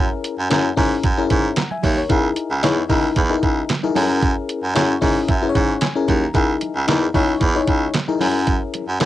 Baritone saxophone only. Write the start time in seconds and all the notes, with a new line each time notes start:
0.39 F#2
0.51 F#2
0.77 G#2
1.04 F#2
1.30 G#2
1.83 D#2
2.10 C#2
2.51 C#2
2.64 E2
2.90 C#2
3.16 E2
3.43 C#2
3.96 F#2
4.63 F#2
4.75 F#2
5.02 G#2
5.29 F#2
5.55 G#2
6.08 D#2
6.35 C#2
6.76 C#2
6.88 E2
7.14 C#2
7.41 E2
7.68 C#2
8.21 F#2
8.88 F#2
9.00 F#2